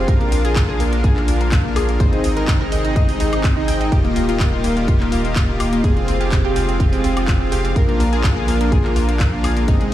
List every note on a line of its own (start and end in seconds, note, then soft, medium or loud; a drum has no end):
0.00 1.96 F3 medium
0.00 1.96 F4 medium
0.08 1.98 A#1 medium
0.08 1.98 D3 medium
0.08 1.98 A#3 medium
0.08 0.42 D4 medium
0.08 0.42 F4 medium
0.08 0.42 A#4 medium
0.08 0.17 A#4 loud
0.08 0.42 F5 loud
0.08 kick loud
0.08 closed hi-hat medium
0.21 0.29 A#3 medium
0.21 closed hi-hat soft
0.32 0.41 A#3 medium
0.32 open hi-hat loud
0.45 1.62 D4 medium
0.45 1.62 F4 medium
0.45 0.53 G#4 medium
0.45 1.62 A#4 medium
0.45 1.62 F5 medium
0.45 closed hi-hat medium
0.56 0.65 A#3 medium
0.56 kick loud
0.56 clap loud
0.56 closed hi-hat medium
0.69 0.76 G#4 medium
0.80 0.89 A#3 medium
0.80 open hi-hat loud
0.93 1.00 A#3 medium
0.93 closed hi-hat medium
1.04 1.13 G#4 loud
1.04 kick loud
1.04 closed hi-hat medium
1.16 1.24 A#3 medium
1.16 clap soft
1.28 1.37 A#3 medium
1.28 open hi-hat loud
1.41 1.48 A#3 medium
1.41 closed hi-hat medium
1.52 kick loud
1.52 clap loud
1.52 closed hi-hat medium
1.65 1.72 A#3 medium
1.65 1.97 D4 medium
1.65 1.97 F4 medium
1.65 1.97 A#4 medium
1.65 1.97 F5 medium
1.76 1.85 G#4 medium
1.76 open hi-hat loud
1.76 high woodblock medium
1.89 1.96 A#3 medium
1.89 closed hi-hat medium
2.00 3.90 G#1 medium
2.00 3.90 C3 medium
2.00 5.80 D#3 medium
2.00 3.90 G#3 medium
2.00 2.34 C4 medium
2.00 2.34 D#4 medium
2.00 3.90 D#4 medium
2.00 2.34 G#4 medium
2.00 2.09 C5 loud
2.00 2.34 D#5 loud
2.00 kick loud
2.00 closed hi-hat medium
2.13 2.21 D#4 medium
2.13 closed hi-hat soft
2.24 2.33 D#4 medium
2.24 open hi-hat loud
2.37 3.54 C4 medium
2.37 3.54 D#4 medium
2.37 3.54 G#4 medium
2.37 2.44 A#4 medium
2.37 3.54 D#5 loud
2.37 closed hi-hat soft
2.48 2.57 D#4 medium
2.48 kick loud
2.48 clap loud
2.48 closed hi-hat medium
2.61 2.68 A#4 loud
2.72 2.81 D#4 medium
2.72 open hi-hat loud
2.85 2.92 D#4 medium
2.85 closed hi-hat medium
2.96 3.05 D#5 loud
2.96 kick loud
2.96 closed hi-hat medium
3.09 3.16 D#4 medium
3.09 open hi-hat medium
3.20 3.29 D#4 medium
3.20 open hi-hat loud
3.33 3.40 D#4 medium
3.33 closed hi-hat medium
3.33 high woodblock medium
3.44 kick loud
3.44 clap loud
3.44 closed hi-hat medium
3.57 3.89 C4 medium
3.57 3.64 D#4 medium
3.57 3.89 D#4 medium
3.57 3.89 G#4 medium
3.57 3.89 D#5 medium
3.68 3.77 G5 medium
3.68 open hi-hat loud
3.81 3.88 D#4 medium
3.81 closed hi-hat medium
3.92 5.82 D#1 medium
3.92 5.82 G3 medium
3.92 5.82 A#3 medium
3.92 4.26 A#3 medium
3.92 4.26 F4 medium
3.92 9.64 F4 medium
3.92 4.01 G4 loud
3.92 4.26 G4 medium
3.92 4.26 D#5 loud
3.92 kick loud
3.92 closed hi-hat medium
4.05 4.12 A#3 medium
4.05 closed hi-hat soft
4.16 4.25 A#3 medium
4.16 open hi-hat loud
4.29 5.46 A#3 medium
4.29 4.36 F4 medium
4.29 5.46 F4 medium
4.29 5.46 G4 medium
4.29 5.46 D#5 medium
4.29 closed hi-hat medium
4.40 4.49 A#3 medium
4.40 kick loud
4.40 clap loud
4.40 closed hi-hat medium
4.53 4.60 F4 medium
4.64 4.73 A#3 medium
4.64 open hi-hat loud
4.77 4.84 A#3 medium
4.77 closed hi-hat medium
4.88 4.97 F4 loud
4.88 kick loud
4.88 closed hi-hat medium
5.00 5.08 A#3 medium
5.00 clap soft
5.12 5.21 A#3 medium
5.12 open hi-hat loud
5.25 5.32 A#3 medium
5.25 closed hi-hat medium
5.36 kick loud
5.36 clap loud
5.36 closed hi-hat medium
5.49 5.56 A#3 medium
5.49 5.81 A#3 medium
5.49 5.81 F4 medium
5.49 5.81 G4 medium
5.49 5.81 D#5 medium
5.60 5.69 F4 medium
5.60 open hi-hat loud
5.60 high woodblock medium
5.73 5.80 A#3 medium
5.73 closed hi-hat medium
5.84 7.74 F1 medium
5.84 7.74 C3 medium
5.84 7.74 F3 medium
5.84 7.74 G#3 medium
5.84 6.18 C4 medium
5.84 6.18 F4 medium
5.84 5.93 G#4 loud
5.84 6.18 G#4 medium
5.84 6.18 F5 loud
5.84 kick loud
5.84 closed hi-hat medium
5.97 6.04 C4 medium
5.97 closed hi-hat soft
6.08 6.17 C4 medium
6.08 open hi-hat loud
6.21 7.38 C4 medium
6.21 7.38 F4 medium
6.21 6.28 G4 medium
6.21 7.38 G#4 medium
6.21 7.38 F5 medium
6.21 closed hi-hat medium
6.32 6.41 C4 medium
6.32 kick loud
6.32 clap loud
6.32 closed hi-hat medium
6.45 6.52 G4 loud
6.56 6.65 C4 medium
6.56 open hi-hat loud
6.69 6.76 C4 medium
6.69 closed hi-hat medium
6.80 6.89 G4 loud
6.80 kick loud
6.80 closed hi-hat medium
6.93 7.00 C4 medium
6.93 open hi-hat medium
7.04 7.13 C4 medium
7.04 open hi-hat loud
7.17 7.24 C4 medium
7.17 closed hi-hat medium
7.17 high woodblock medium
7.28 kick loud
7.28 clap loud
7.28 closed hi-hat medium
7.41 7.48 C4 medium
7.41 7.73 C4 medium
7.41 7.73 F4 medium
7.41 7.73 G#4 medium
7.41 7.73 F5 medium
7.52 7.61 G4 medium
7.52 open hi-hat loud
7.65 7.72 C4 medium
7.65 closed hi-hat medium
7.76 9.66 A#1 medium
7.76 9.66 D3 medium
7.76 9.66 F3 medium
7.76 9.66 A#3 medium
7.76 8.10 D4 medium
7.76 8.10 F4 medium
7.76 7.85 A#4 loud
7.76 8.10 A#4 medium
7.76 8.10 F5 loud
7.76 kick loud
7.76 closed hi-hat medium
7.89 7.96 A#3 medium
7.89 closed hi-hat soft
8.00 8.09 A#3 medium
8.00 open hi-hat loud
8.13 9.30 D4 medium
8.13 9.30 F4 medium
8.13 8.20 G#4 medium
8.13 9.30 A#4 medium
8.13 9.30 F5 medium
8.13 closed hi-hat medium
8.24 8.33 A#3 medium
8.24 kick loud
8.24 clap loud
8.24 closed hi-hat medium
8.37 8.44 G#4 medium
8.48 8.57 A#3 medium
8.48 open hi-hat loud
8.61 8.68 A#3 medium
8.61 closed hi-hat medium
8.72 8.81 G#4 loud
8.72 kick loud
8.72 closed hi-hat medium
8.84 8.92 A#3 medium
8.84 clap soft
8.96 9.05 A#3 medium
8.96 open hi-hat loud
9.09 9.16 A#3 medium
9.09 closed hi-hat medium
9.20 kick loud
9.20 clap loud
9.20 closed hi-hat medium
9.33 9.40 A#3 medium
9.33 9.65 D4 medium
9.33 9.65 F4 medium
9.33 9.65 A#4 medium
9.33 9.65 F5 medium
9.44 9.53 G#4 medium
9.44 open hi-hat loud
9.44 high woodblock medium
9.57 9.64 A#3 medium
9.57 closed hi-hat medium
9.68 9.94 G#1 medium
9.68 9.94 C3 medium
9.68 9.94 D#3 medium
9.68 9.94 G#3 medium
9.68 9.94 C4 medium
9.68 9.77 D#4 loud
9.68 9.94 D#4 medium
9.68 9.94 G#4 medium
9.68 9.94 D#5 medium
9.68 kick loud
9.68 closed hi-hat medium
9.81 9.88 G#3 medium
9.81 closed hi-hat soft